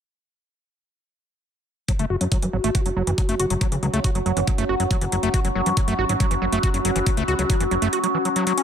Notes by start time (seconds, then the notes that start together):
1.88 F#3 C#4 F#4, kick, closed hi-hat
1.96 F#1 A3 F#4, closed hi-hat
2.06 F#1 F#4 C#6
2.19 F#2 F#3 F#5, closed hi-hat
2.32 F#3, kick, closed hi-hat
2.42 F#2 E3, closed hi-hat
2.53 G#1 F#3
2.64 G#1 A3, closed hi-hat
2.75 F#4, kick, closed hi-hat
2.86 F#1 F#3, closed hi-hat
2.96 F#1 F#3
3.07 F#1 E3, closed hi-hat
3.18 F#3, kick, closed hi-hat
3.29 F#1 A3, closed hi-hat
3.40 F#1 F#4, closed hi-hat
3.50 F#1 F#3, closed hi-hat
3.61 F#3, kick, closed hi-hat
3.72 C#2 E3, closed hi-hat
3.83 C#2 F#3, closed hi-hat
3.93 C#2 A3, closed hi-hat
4.04 F#4, kick, closed hi-hat
4.15 F#1 F#3, closed hi-hat
4.26 F#1 F#3, closed hi-hat
4.37 F#1 E3, closed hi-hat
4.47 F#3, kick, closed hi-hat
4.58 F#1 A3, closed hi-hat
4.69 F#1 F#4
4.80 F#1 F#3, closed hi-hat
4.91 F#3, kick, closed hi-hat
5.01 F#1 E3, closed hi-hat
5.12 F#1 F#3, closed hi-hat
5.23 F#1 A3, closed hi-hat
5.34 F#4, kick, closed hi-hat
5.45 F#1 F#3, closed hi-hat
5.53 F#1 F#3 B5
5.66 F#2 E3, closed hi-hat
5.77 F#3, kick, closed hi-hat
5.88 F#2 A3, closed hi-hat
5.99 G#1 F#4
6.09 G#1 F#3, closed hi-hat
6.20 F#3, kick, closed hi-hat
6.31 F#1 E3, closed hi-hat
6.42 F#1 F#3
6.52 F#1 A3, closed hi-hat
6.63 F#4, kick, closed hi-hat
6.74 F#1 F#3, closed hi-hat
6.85 F#1 F#3, closed hi-hat
6.96 F#1 E3, closed hi-hat
7.06 F#3, kick, closed hi-hat
7.17 C#2 A3, closed hi-hat
7.28 C#2 F#4, closed hi-hat
7.39 C#2 F#3, closed hi-hat
7.50 F#3, kick, closed hi-hat
7.60 F#1 E3, closed hi-hat
7.71 F#1 F#3, closed hi-hat
7.82 F#1 A3, closed hi-hat
7.93 F#4, closed hi-hat
8.04 F#3, closed hi-hat
8.14 E3
8.25 F#3, closed hi-hat
8.36 F#3, closed hi-hat
8.47 F#3, closed hi-hat
8.58 C#4, closed hi-hat